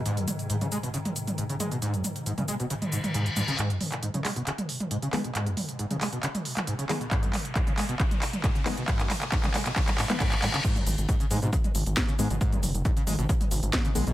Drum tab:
CC |----------------|----------------|----------------|----------------|
HH |xxxxxxxxxxxxxxxx|xxxxxxxxxxxxxxxx|xxoxxxoxxxoxxxox|xxoxxxoxxxoxxxox|
SH |xxxxxxxxxxxxxxxx|xxxxxxxxxxxxxxxx|----------------|----------------|
CP |----------------|----------------|x--x--x-x-----x-|x-----x-x--x--x-|
SD |----------------|----------------|----------------|----------------|
T2 |--o--o---o-o--o-|--o--o---o-o--o-|--o--o---o-o--o-|--o--o---o-o--o-|
BD |----------------|----------------|----------------|----------------|

CC |----------------|----------------|x---------------|----------------|
HH |xxoxxxoxxxoxxxox|xxoxxxoxxxoxxxox|xxoxxxoxxxoxxxox|xxoxxxoxxxoxxxox|
SH |----------------|----------------|xxxxxxxxxxxxxxxx|xxxxxxxxxxxxxxxx|
CP |x-x-x-x-x-x-x-x-|xxxxxxxxxxxxxxxx|----------------|----------------|
SD |----------------|----------------|------------o---|------------o---|
T2 |--o--o---o-o--o-|--o--o---o-o--o-|-oo---o--o-----o|-oo---o--o-----o|
BD |o---o---o---o---|o---o---o---o---|o---o---o---o---|o---o---o---o---|